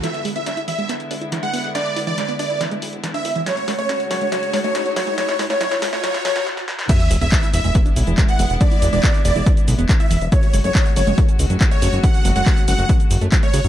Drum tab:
CC |----------------|----------------|----------------|----------------|
HH |xxoxxxoxxxoxxxox|xxoxxxoxxxoxxxox|xxoxxxoxxxo-xxox|xxoxxxoxxxox----|
SH |----------------|----------------|----------------|----------------|
CP |----------------|----------------|----------------|----------------|
SD |o---o---o---o---|o---o---o---o---|o-o-o-o-o-o-o-o-|oooooooooooooooo|
BD |----------------|----------------|----------------|----------------|

CC |x---------------|----------------|----------------|----------------|
HH |xxoxxxoxxxoxxxox|xxoxxxoxxxoxxxox|xxoxxxoxxxoxxxox|xxoxxxoxxxoxxxox|
SH |xxxxxxxxxxxxxxxx|xxxxxxxxxxxxxxxx|xxxxxxxxxxxxxxxx|xxxxxxxxxxxxxxxx|
CP |----x-------x---|----x-------x---|----x-------x---|----x-------x---|
SD |----------------|----------------|----------------|----------------|
BD |o---o---o---o---|o---o---o---o---|o---o---o---o---|o---o---o---o---|